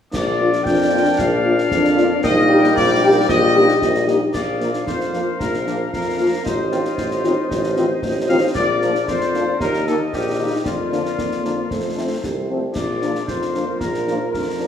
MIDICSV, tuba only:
0, 0, Header, 1, 2, 480
1, 0, Start_track
1, 0, Key_signature, -2, "major"
1, 0, Tempo, 525855
1, 120, Time_signature, 2, 2, 24, 8
1, 13392, End_track
2, 0, Start_track
2, 0, Title_t, "Tuba"
2, 0, Program_c, 0, 58
2, 121, Note_on_c, 0, 34, 80
2, 521, Note_off_c, 0, 34, 0
2, 607, Note_on_c, 0, 41, 70
2, 1003, Note_off_c, 0, 41, 0
2, 1085, Note_on_c, 0, 34, 86
2, 1483, Note_off_c, 0, 34, 0
2, 1566, Note_on_c, 0, 41, 81
2, 1963, Note_off_c, 0, 41, 0
2, 2040, Note_on_c, 0, 34, 92
2, 2440, Note_off_c, 0, 34, 0
2, 2527, Note_on_c, 0, 34, 85
2, 2923, Note_off_c, 0, 34, 0
2, 3004, Note_on_c, 0, 34, 98
2, 3402, Note_off_c, 0, 34, 0
2, 3483, Note_on_c, 0, 34, 86
2, 3882, Note_off_c, 0, 34, 0
2, 3969, Note_on_c, 0, 34, 61
2, 4365, Note_off_c, 0, 34, 0
2, 4445, Note_on_c, 0, 41, 55
2, 4843, Note_off_c, 0, 41, 0
2, 4929, Note_on_c, 0, 34, 57
2, 5325, Note_off_c, 0, 34, 0
2, 5407, Note_on_c, 0, 41, 58
2, 5804, Note_off_c, 0, 41, 0
2, 5889, Note_on_c, 0, 33, 63
2, 6285, Note_off_c, 0, 33, 0
2, 6366, Note_on_c, 0, 33, 59
2, 6721, Note_off_c, 0, 33, 0
2, 6841, Note_on_c, 0, 33, 72
2, 7241, Note_off_c, 0, 33, 0
2, 7323, Note_on_c, 0, 33, 65
2, 7723, Note_off_c, 0, 33, 0
2, 7805, Note_on_c, 0, 34, 69
2, 8204, Note_off_c, 0, 34, 0
2, 8284, Note_on_c, 0, 41, 63
2, 8683, Note_off_c, 0, 41, 0
2, 8763, Note_on_c, 0, 39, 69
2, 9163, Note_off_c, 0, 39, 0
2, 9245, Note_on_c, 0, 34, 58
2, 9644, Note_off_c, 0, 34, 0
2, 9724, Note_on_c, 0, 41, 57
2, 10123, Note_off_c, 0, 41, 0
2, 10204, Note_on_c, 0, 41, 52
2, 10603, Note_off_c, 0, 41, 0
2, 10689, Note_on_c, 0, 41, 58
2, 11085, Note_off_c, 0, 41, 0
2, 11170, Note_on_c, 0, 36, 51
2, 11566, Note_off_c, 0, 36, 0
2, 11646, Note_on_c, 0, 34, 59
2, 12044, Note_off_c, 0, 34, 0
2, 12123, Note_on_c, 0, 41, 51
2, 12523, Note_off_c, 0, 41, 0
2, 12602, Note_on_c, 0, 34, 57
2, 13002, Note_off_c, 0, 34, 0
2, 13082, Note_on_c, 0, 41, 53
2, 13392, Note_off_c, 0, 41, 0
2, 13392, End_track
0, 0, End_of_file